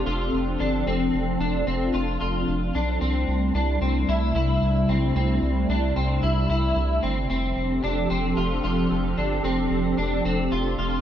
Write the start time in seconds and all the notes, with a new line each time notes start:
Already playing: F3 C4 D4 G4 A4
0.06 F1 F4
0.33 F1
0.60 G1 D4
0.87 F1 C4 F4
1.14 F1
1.40 F1 D4
1.67 F1 C4
1.94 F1 F4
2.21 F1 F4
2.48 F1
2.75 B1 D4
3.01 C2 C3 G3 A3 C4 E4
3.28 C2
3.55 C2 D4
3.81 C2 C4
4.08 C2 E4
4.35 C2 E4
4.62 C2
4.89 B1 C4
5.16 C2 C4
5.42 C2
5.69 C2 D4
5.96 C2 C4
6.23 C2 E4
6.50 C2 E4
6.76 C2
7.03 G1 C4
7.30 F1 F3 C4 D4 G4 A4
7.57 F1
7.84 F1 D4
8.10 F1 C4
8.37 F1 F4
8.64 F1 F4
8.91 F1
9.17 G1 D4
9.44 F1 C4
9.70 F1
9.98 F1 D4
10.25 F1 C4
10.52 F1 F4
10.78 F1 F4